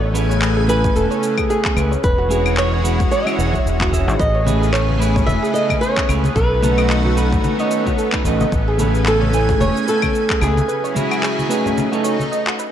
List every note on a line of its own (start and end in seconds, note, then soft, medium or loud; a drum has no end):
0.00 0.89 A1 loud
0.00 2.02 C#3 medium
0.00 1.99 A3 medium
0.00 2.00 B3 medium
0.00 0.69 C#5 medium
0.00 2.01 G#5 medium
0.14 0.65 A3 medium
0.14 0.66 C#4 medium
0.14 0.66 E4 medium
0.14 0.66 G#4 medium
0.14 0.23 B4 medium
0.14 0.66 B4 loud
0.14 cabasa medium
0.29 0.36 C#5 loud
0.29 cabasa soft
0.42 clap medium
0.42 cabasa soft
0.57 0.67 G#4 loud
0.67 1.73 A3 loud
0.67 1.74 C#4 medium
0.67 1.74 E4 medium
0.67 0.77 A4 medium
0.67 0.97 B4 medium
0.67 1.75 G#5 medium
0.67 cabasa medium
0.71 1.75 B4 loud
0.84 kick loud
0.84 cabasa soft
0.95 1.05 E1 medium
0.95 1.50 A4 medium
0.95 1.04 B4 medium
0.95 cabasa soft
1.11 1.17 C#5 loud
1.11 cabasa soft
1.23 cabasa medium
1.38 1.48 G#4 loud
1.38 kick medium
1.38 cabasa soft
1.38 claves medium
1.49 2.06 G#4 medium
1.49 1.58 A4 medium
1.49 cabasa soft
1.65 kick loud
1.65 clap medium
1.76 1.95 C#2 loud
1.76 1.92 A3 medium
1.76 1.92 C#4 medium
1.76 1.92 E4 medium
1.76 1.92 G#4 medium
1.76 1.85 B4 medium
1.76 1.93 B4 medium
1.76 cabasa medium
1.76 claves medium
1.91 1.98 C#5 loud
1.91 cabasa soft
2.04 3.05 E1 loud
2.04 4.18 E3 medium
2.04 4.18 G#3 medium
2.04 4.18 C#4 medium
2.04 4.18 F#4 medium
2.04 2.58 B4 loud
2.04 kick loud
2.04 cabasa soft
2.18 2.29 F#4 loud
2.29 2.81 G#3 medium
2.29 2.82 C#4 medium
2.29 2.82 E4 medium
2.29 2.82 F#4 medium
2.29 2.39 G#4 medium
2.29 2.82 G#4 medium
2.29 cabasa medium
2.46 cabasa soft
2.46 claves medium
2.57 2.66 B4 medium
2.57 3.11 C#5 loud
2.57 clap medium
2.57 cabasa soft
2.72 2.79 C#5 medium
2.83 3.23 G#3 medium
2.83 3.23 C#4 medium
2.83 3.23 E4 medium
2.83 3.24 F#4 medium
2.83 3.24 B4 medium
2.83 cabasa medium
2.99 3.10 F#4 loud
2.99 kick loud
2.99 cabasa soft
3.11 3.20 G#4 medium
3.11 3.89 E5 medium
3.11 cabasa soft
3.26 3.51 G#3 medium
3.26 3.51 C#4 medium
3.26 3.51 E4 medium
3.26 3.51 F#4 medium
3.26 3.52 C#5 medium
3.26 cabasa soft
3.26 claves medium
3.38 3.57 E1 medium
3.38 3.47 B4 medium
3.38 cabasa medium
3.52 3.77 G#3 medium
3.52 3.77 C#4 medium
3.52 3.77 E4 medium
3.52 3.77 F#4 medium
3.52 3.60 C#5 loud
3.52 3.78 C#5 medium
3.52 kick medium
3.52 cabasa soft
3.66 4.08 E1 medium
3.66 cabasa soft
3.80 3.89 G#3 medium
3.80 3.90 C#4 medium
3.80 3.90 E4 medium
3.80 3.92 F#4 medium
3.80 3.90 F#4 medium
3.80 3.90 B4 medium
3.80 kick loud
3.80 clap medium
3.91 4.14 G#3 medium
3.91 4.14 C#4 medium
3.91 4.15 E4 medium
3.91 4.15 F#4 medium
3.91 4.01 G#4 medium
3.91 4.15 E5 loud
3.91 kick medium
3.91 cabasa medium
4.08 4.15 G#1 medium
4.08 cabasa soft
4.19 5.21 A1 medium
4.19 6.33 C#3 medium
4.19 10.64 A3 medium
4.19 10.64 B3 medium
4.19 6.34 G#4 loud
4.19 4.28 B4 medium
4.19 12.72 B4 medium
4.19 4.72 D#5 medium
4.19 12.72 G#5 medium
4.19 kick loud
4.19 cabasa soft
4.34 4.41 C#5 loud
4.45 4.97 A3 medium
4.45 4.98 C#4 medium
4.45 4.98 E4 medium
4.45 4.98 G#4 medium
4.45 4.98 B4 medium
4.45 high conga medium
4.45 cabasa medium
4.62 4.72 G#4 loud
4.62 cabasa soft
4.73 4.82 A4 medium
4.73 5.26 C#5 medium
4.73 clap medium
4.73 cabasa soft
4.90 high conga medium
4.98 6.05 A3 loud
4.98 6.05 C#4 medium
4.98 6.06 E4 medium
4.98 6.06 G#4 medium
4.98 5.09 B4 medium
4.98 6.07 B4 loud
5.02 cabasa medium
5.16 5.22 C#5 loud
5.16 kick loud
5.16 low conga medium
5.16 cabasa soft
5.26 5.37 E1 medium
5.26 5.52 E5 loud
5.26 high conga medium
5.26 cabasa soft
5.43 5.54 G#4 loud
5.43 cabasa soft
5.54 5.63 A4 medium
5.54 5.81 D#5 medium
5.54 cabasa medium
5.69 kick medium
5.69 high conga medium
5.69 cabasa soft
5.69 claves medium
5.81 5.90 B4 medium
5.81 6.35 C#5 loud
5.81 cabasa soft
5.97 6.04 C#5 loud
5.97 kick loud
5.97 clap medium
6.08 6.27 C#2 loud
6.08 6.24 A3 medium
6.08 6.24 C#4 medium
6.08 6.24 E4 medium
6.08 6.25 G#4 medium
6.08 6.25 B4 medium
6.08 cabasa medium
6.08 claves medium
6.24 6.35 G#4 loud
6.24 high conga medium
6.24 cabasa soft
6.36 7.37 B1 loud
6.36 8.50 D#3 medium
6.36 8.50 F#4 medium
6.36 6.44 A4 medium
6.36 7.94 B4 medium
6.36 kick loud
6.36 cabasa soft
6.62 7.14 A3 medium
6.62 7.14 C#4 medium
6.62 7.15 D#4 medium
6.62 7.15 F#4 medium
6.62 7.15 A4 medium
6.62 6.71 B4 medium
6.62 high conga medium
6.62 cabasa medium
6.78 6.85 D#5 loud
6.78 cabasa soft
6.78 claves medium
6.90 clap medium
6.90 cabasa soft
7.05 7.16 F#4 medium
7.05 high conga medium
7.16 7.55 A3 medium
7.16 7.56 C#4 medium
7.16 7.56 D#4 medium
7.16 7.56 F#4 medium
7.16 7.25 A4 medium
7.16 7.56 B4 loud
7.16 cabasa medium
7.33 kick loud
7.33 low conga medium
7.33 cabasa soft
7.44 7.53 B4 medium
7.44 high conga medium
7.44 cabasa soft
7.58 7.83 A3 medium
7.58 7.83 C#4 medium
7.58 7.83 D#4 medium
7.58 7.84 F#4 medium
7.58 7.84 C#5 medium
7.58 7.66 D#5 loud
7.58 cabasa soft
7.71 cabasa medium
7.85 8.09 A3 medium
7.85 8.10 C#4 medium
7.85 8.10 D#4 medium
7.85 7.97 F#4 loud
7.85 8.10 F#4 medium
7.85 8.10 C#5 medium
7.85 kick medium
7.85 high conga medium
7.85 cabasa soft
7.98 8.06 A4 medium
7.98 cabasa soft
8.12 8.22 A3 medium
8.12 8.22 C#4 medium
8.12 8.22 D#4 medium
8.12 8.23 F#4 medium
8.12 8.23 B4 medium
8.12 kick loud
8.12 clap medium
8.24 8.43 A1 loud
8.24 8.47 A3 medium
8.24 8.47 C#4 medium
8.24 8.47 D#4 medium
8.24 8.48 F#4 medium
8.24 8.33 B4 medium
8.24 8.48 D#5 medium
8.24 kick medium
8.24 cabasa medium
8.40 8.47 D#5 loud
8.40 high conga medium
8.40 cabasa soft
8.52 9.53 A1 loud
8.52 10.67 C#3 medium
8.52 10.67 G#5 loud
8.52 kick loud
8.52 cabasa soft
8.68 8.78 G#4 loud
8.78 9.30 A3 medium
8.78 9.30 C#4 medium
8.78 9.31 E4 medium
8.78 9.31 G#4 medium
8.78 8.88 A4 medium
8.78 9.31 B4 loud
8.78 high conga medium
8.78 cabasa medium
8.95 cabasa soft
9.06 9.60 A4 medium
9.06 9.15 B4 medium
9.06 clap medium
9.06 cabasa soft
9.21 9.28 C#5 loud
9.21 high conga medium
9.31 10.38 A3 loud
9.31 10.38 C#4 medium
9.31 10.39 E4 medium
9.31 10.39 G#5 loud
9.31 cabasa medium
9.36 10.40 B4 loud
9.49 9.59 G#4 loud
9.49 kick loud
9.49 low conga medium
9.49 cabasa soft
9.60 9.70 E1 medium
9.60 9.69 A4 medium
9.60 9.88 C#5 loud
9.60 high conga medium
9.60 cabasa soft
9.77 cabasa soft
9.87 10.43 A4 medium
9.87 9.96 B4 medium
9.87 cabasa medium
10.02 10.09 C#5 loud
10.02 kick medium
10.02 high conga medium
10.02 cabasa soft
10.02 claves medium
10.15 cabasa soft
10.29 10.40 G#4 loud
10.29 kick medium
10.29 clap medium
10.40 10.60 C#2 loud
10.40 10.56 A3 medium
10.40 10.56 C#4 medium
10.40 10.57 E4 medium
10.40 10.57 G#4 medium
10.40 10.93 G#4 medium
10.40 10.50 A4 medium
10.40 10.57 B4 medium
10.40 cabasa medium
10.40 claves medium
10.57 high conga medium
10.57 cabasa soft
10.68 12.72 C#3 medium
10.68 11.76 F#3 medium
10.68 11.76 E4 medium
10.68 12.72 G#4 medium
10.68 10.77 B4 medium
10.68 cabasa soft
10.84 10.90 C#5 loud
10.84 cabasa soft
10.95 11.47 G#3 medium
10.95 11.47 C#4 medium
10.95 11.47 E4 medium
10.95 11.47 F#4 medium
10.95 11.48 G#4 medium
10.95 high conga medium
10.95 cabasa medium
11.11 11.21 F#4 loud
11.11 cabasa soft
11.11 claves medium
11.22 11.31 G#4 medium
11.22 clap medium
11.22 cabasa soft
11.39 high conga medium
11.39 cabasa soft
11.49 11.88 A3 medium
11.49 11.88 C#4 medium
11.49 11.89 D#4 medium
11.49 11.89 F#4 medium
11.49 11.89 G#4 loud
11.49 11.58 B4 medium
11.49 cabasa medium
11.65 11.71 C#5 loud
11.65 low conga medium
11.65 cabasa soft
11.78 12.72 A3 medium
11.78 12.72 D#4 medium
11.78 high conga medium
11.78 cabasa soft
11.92 12.16 A3 medium
11.92 12.16 C#4 medium
11.92 12.17 D#4 medium
11.92 12.02 F#4 loud
11.92 12.17 F#4 medium
11.92 12.17 A4 loud
11.92 cabasa soft
12.04 12.18 C#5 loud
12.04 cabasa medium
12.20 high conga medium
12.20 cabasa soft
12.31 12.39 D#5 medium
12.31 cabasa soft
12.47 12.53 F#4 medium
12.47 clap medium
12.59 12.72 B4 medium
12.59 cabasa medium